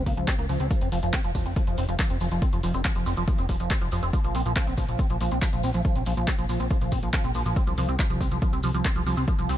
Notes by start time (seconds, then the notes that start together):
0.06 C#2 A#3, kick, open hi-hat
0.17 C#2 F3, closed hi-hat
0.28 C4, kick, clap, closed hi-hat
0.38 C#2 A#3, closed hi-hat
0.49 C#2 F3, open hi-hat
0.60 C#2 C4, closed hi-hat
0.71 F3, kick, closed hi-hat, cabasa
0.81 F1 C4, closed hi-hat, cabasa
0.92 F1 F3, open hi-hat, cabasa
1.03 F1 F3, closed hi-hat, cabasa
1.13 C4, kick, clap, closed hi-hat, cabasa
1.24 F1 F3, closed hi-hat, cabasa
1.35 F1 F3, kick, open hi-hat, cabasa
1.45 F1 C4, closed hi-hat, cabasa
1.56 F3, kick, closed hi-hat, cabasa
1.67 F1 F3, closed hi-hat, cabasa
1.78 F1 C4, open hi-hat, cabasa
1.88 F1 F3, closed hi-hat, cabasa
1.99 F3, kick, clap, closed hi-hat, cabasa
2.10 F1 C4, closed hi-hat, cabasa
2.20 F1 F3, open hi-hat, cabasa
2.31 F1 F3, closed hi-hat, cabasa
2.42 C4, kick, closed hi-hat, cabasa
2.53 F1 F3, closed hi-hat, cabasa
2.63 F1 F3, open hi-hat, cabasa
2.74 F1 C4, closed hi-hat, cabasa
2.85 F3, kick, clap, closed hi-hat, cabasa
2.95 F1 F3, closed hi-hat, cabasa
3.06 F1 C4, open hi-hat, cabasa
3.17 F1 F3, closed hi-hat, cabasa
3.28 F3, kick, closed hi-hat, cabasa
3.38 F1 C4, closed hi-hat, cabasa
3.49 F1 F3, kick, open hi-hat, cabasa
3.59 F1 F3, closed hi-hat, cabasa
3.70 C4, kick, clap, closed hi-hat, cabasa
3.81 F1 F3, closed hi-hat, cabasa
3.92 F1 F3, open hi-hat, cabasa
4.03 F1 C4, closed hi-hat, cabasa
4.13 F3, kick, closed hi-hat, cabasa
4.24 A#1 F3, closed hi-hat, cabasa
4.35 A#1 C4, open hi-hat, cabasa
4.46 A#1 F3, closed hi-hat, cabasa
4.56 F3, kick, clap, closed hi-hat, cabasa
4.67 A#1 C4, closed hi-hat, cabasa
4.77 A#1 F3, kick, open hi-hat, cabasa
4.88 A#1 F3, closed hi-hat, cabasa
4.99 C4, kick, closed hi-hat, cabasa
5.10 A#1 F3, closed hi-hat, cabasa
5.21 A#1 F3, open hi-hat, cabasa
5.31 A#1 C4, closed hi-hat, cabasa
5.41 F3, kick, clap, closed hi-hat, cabasa
5.52 A#1 F3, closed hi-hat, cabasa
5.63 A#1 C4, open hi-hat, cabasa
5.74 A#1 F3, closed hi-hat, cabasa
5.85 F3, kick, closed hi-hat, cabasa
5.95 A#1 C4, closed hi-hat, cabasa
6.06 A#1 F3, open hi-hat, cabasa
6.17 A#1 F3, closed hi-hat, cabasa
6.28 C4, kick, clap, closed hi-hat, cabasa
6.38 A#1 F3, closed hi-hat, cabasa
6.49 A#1 F3, open hi-hat, cabasa
6.60 A#1 C4, closed hi-hat, cabasa
6.70 F3, kick, closed hi-hat, cabasa
6.81 A#1 F3, closed hi-hat, cabasa
6.92 A#1 C4, kick, open hi-hat, cabasa
7.03 A#1 F3, closed hi-hat, cabasa
7.13 F3, kick, clap, closed hi-hat, cabasa
7.24 A#1 C4, closed hi-hat, cabasa
7.35 A#1 F3, open hi-hat, cabasa
7.46 A#1 F3, closed hi-hat, cabasa
7.56 C4, kick, closed hi-hat, cabasa
7.67 C2 F3, closed hi-hat, cabasa
7.78 C2 F3, open hi-hat, cabasa
7.88 C2 C4, closed hi-hat, cabasa
7.99 F3, kick, clap, closed hi-hat, cabasa
8.10 C2 F3, closed hi-hat, cabasa
8.21 C2 C4, kick, open hi-hat, cabasa
8.31 C2 F3, closed hi-hat, cabasa
8.42 F3, kick, closed hi-hat, cabasa
8.53 C2 C4, closed hi-hat, cabasa
8.63 C2 F3, open hi-hat, cabasa
8.74 C2 F3, closed hi-hat, cabasa
8.84 C4, kick, clap, closed hi-hat, cabasa
8.95 C2 F3, closed hi-hat, cabasa
9.06 C2 F3, open hi-hat, cabasa
9.16 C2 C4, closed hi-hat, cabasa
9.28 F3, kick, closed hi-hat, cabasa
9.39 C2 F3, closed hi-hat, cabasa
9.49 C2 C4, open hi-hat, cabasa